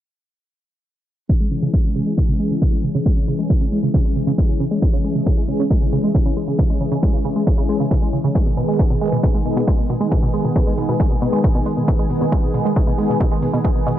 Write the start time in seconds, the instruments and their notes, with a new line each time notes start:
1.29 synth arpeggio sound C#3, analog synth pad E3 G#3 C#4 G#4, kick
1.40 synth arpeggio sound G#3
1.51 synth arpeggio sound C#3, analog synth pad E3 G#3 C#4 G#4
1.62 synth arpeggio sound C#3
1.73 analog synth pad E3 G#3 C#4 G#4, synth arpeggio sound G#3, kick
1.84 synth arpeggio sound C#3
1.95 synth arpeggio sound C#3, analog synth pad E3 G#3 C#4 G#4
2.06 synth arpeggio sound G#3
2.17 synth arpeggio sound C#3, analog synth pad E3 G#3 C#4 G#4, kick
2.28 synth arpeggio sound C#3
2.39 analog synth pad E3 G#3 C#4 G#4, synth arpeggio sound G#3
2.51 synth arpeggio sound C#3
2.62 synth arpeggio sound C#3, analog synth pad E3 G#3 C#4 G#4, kick
2.73 synth arpeggio sound G#3
2.84 synth arpeggio sound C#3
2.95 synth arpeggio sound C#3, analog synth pad E3 G#3 C#4 G#4
3.06 analog synth pad E3 G#3 C#4 G#4, synth arpeggio sound G#3, kick
3.17 synth arpeggio sound C#3
3.28 synth arpeggio sound C#3, analog synth pad E3 G#3 C#4 G#4
3.39 synth arpeggio sound G#3
3.50 synth arpeggio sound C#3, analog synth pad E3 G#3 C#4 G#4, kick
3.61 synth arpeggio sound C#3
3.72 analog synth pad E3 G#3 C#4 G#4, synth arpeggio sound G#3
3.83 synth arpeggio sound C#3
3.94 synth arpeggio sound C#3, analog synth pad E3 G#3 C#4 G#4, kick
4.05 synth arpeggio sound G#3
4.16 synth arpeggio sound C#3, analog synth pad E3 G#3 C#4 G#4
4.27 synth arpeggio sound C#3
4.38 analog synth pad E3 G#3 C#4 G#4, synth arpeggio sound G#3, kick
4.49 synth arpeggio sound C#3
4.60 synth arpeggio sound C#3
4.71 analog synth pad E3 G#3 C#4 G#4, synth arpeggio sound G#3
4.82 synth arpeggio sound C#3, analog synth pad E3 G#3 C#4 G#4, kick
4.93 synth arpeggio sound C#3
5.04 analog synth pad E3 G#3 C#4 G#4, synth arpeggio sound G#3
5.15 synth arpeggio sound C#3
5.26 synth arpeggio sound C#3, analog synth pad E3 G#3 C#4 G#4, kick
5.37 synth arpeggio sound G#3
5.48 synth arpeggio sound C#3, analog synth pad E3 G#3 C#4 G#4
5.59 synth arpeggio sound C#3
5.70 analog synth pad E3 G#3 C#4 G#4, synth arpeggio sound G#3, kick
5.82 synth arpeggio sound C#3
5.92 synth arpeggio sound C#3, analog synth pad E3 G#3 C#4 G#4
6.04 synth arpeggio sound G#3
6.14 synth arpeggio sound C#3, analog synth pad E3 G#3 C#4 G#4, kick
6.26 synth arpeggio sound C#3
6.37 synth arpeggio sound G#3
6.48 synth arpeggio sound C#3, analog synth pad E3 G#3 C#4 G#4
6.59 synth arpeggio sound C#3, analog synth pad E3 G#3 C#4 G#4, kick
6.70 synth arpeggio sound G#3
6.81 synth arpeggio sound C#3, analog synth pad E3 G#3 C#4 G#4
6.92 synth arpeggio sound C#3
7.03 analog synth pad E3 G#3 C#4 G#4, synth arpeggio sound G#3, kick
7.14 synth arpeggio sound C#3
7.25 synth arpeggio sound C#3, analog synth pad E3 G#3 C#4 G#4
7.36 synth arpeggio sound G#3
7.47 synth arpeggio sound C#3, analog synth pad E3 G#3 C#4 G#4, kick
7.58 synth arpeggio sound C#3
7.69 analog synth pad E3 G#3 C#4 G#4, synth arpeggio sound G#3
7.80 synth arpeggio sound C#3
7.91 synth arpeggio sound C#3, analog synth pad E3 G#3 C#4 G#4, kick
8.02 synth arpeggio sound G#3
8.13 synth arpeggio sound C#3
8.24 synth arpeggio sound C#3, analog synth pad E3 G#3 C#4 G#4
8.35 analog synth pad D#3 G#3 B3 G#4, synth arpeggio sound G#3, kick
8.46 synth arpeggio sound B2
8.57 synth arpeggio sound B2, analog synth pad D#3 G#3 B3 G#4, open hi-hat
8.68 synth arpeggio sound G#3
8.79 synth arpeggio sound B2, analog synth pad D#3 G#3 B3 G#4, kick
8.90 synth arpeggio sound B2
9.01 analog synth pad D#3 G#3 B3 G#4, synth arpeggio sound G#3, open hi-hat
9.12 synth arpeggio sound B2
9.23 synth arpeggio sound B2, analog synth pad D#3 G#3 B3 G#4, kick
9.34 synth arpeggio sound G#3
9.45 synth arpeggio sound B2, analog synth pad D#3 G#3 B3 G#4, open hi-hat
9.56 synth arpeggio sound B2
9.67 analog synth pad D#3 G#3 B3 G#4, synth arpeggio sound G#3, kick
9.78 synth arpeggio sound B2
9.89 synth arpeggio sound B2, open hi-hat
10.00 analog synth pad D#3 G#3 B3 G#4, synth arpeggio sound G#3
10.12 synth arpeggio sound B2, analog synth pad D#3 G#3 B3 G#4, kick
10.23 synth arpeggio sound B2
10.34 analog synth pad D#3 G#3 B3 G#4, synth arpeggio sound G#3, open hi-hat
10.45 synth arpeggio sound B2
10.55 synth arpeggio sound B2, analog synth pad D#3 G#3 B3 G#4, kick
10.67 synth arpeggio sound G#3
10.78 synth arpeggio sound B2, analog synth pad D#3 G#3 B3 G#4, open hi-hat
10.89 synth arpeggio sound B2
11.00 analog synth pad D#3 G#3 B3 G#4, synth arpeggio sound G#3, kick
11.11 synth arpeggio sound B2
11.22 synth arpeggio sound B2, analog synth pad D#3 G#3 B3 G#4, open hi-hat
11.33 synth arpeggio sound G#3
11.44 synth arpeggio sound B2, analog synth pad D#3 G#3 B3 G#4, kick
11.55 synth arpeggio sound B2
11.66 synth arpeggio sound G#3, open hi-hat
11.77 synth arpeggio sound B2, analog synth pad D#3 G#3 B3 G#4
11.88 synth arpeggio sound B2, analog synth pad D#3 G#3 B3 G#4, kick
11.99 synth arpeggio sound G#3
12.10 synth arpeggio sound B2, analog synth pad D#3 G#3 B3 G#4, open hi-hat
12.21 synth arpeggio sound B2
12.32 analog synth pad D#3 G#3 B3 G#4, synth arpeggio sound G#3, kick
12.43 synth arpeggio sound B2
12.54 synth arpeggio sound B2, analog synth pad D#3 G#3 B3 G#4, open hi-hat
12.65 synth arpeggio sound G#3
12.76 synth arpeggio sound B2, analog synth pad D#3 G#3 B3 G#4, kick
12.87 synth arpeggio sound B2
12.98 analog synth pad D#3 G#3 B3 G#4, synth arpeggio sound G#3, open hi-hat
13.09 synth arpeggio sound B2
13.20 synth arpeggio sound B2, analog synth pad D#3 G#3 B3 G#4, kick
13.31 synth arpeggio sound G#3
13.42 synth arpeggio sound B2, open hi-hat
13.53 synth arpeggio sound B2, analog synth pad D#3 G#3 B3 G#4
13.64 analog synth pad D#3 G#3 B3 G#4, synth arpeggio sound G#3, kick
13.76 synth arpeggio sound B2
13.86 synth arpeggio sound B2, analog synth pad D#3 G#3 B3 G#4, open hi-hat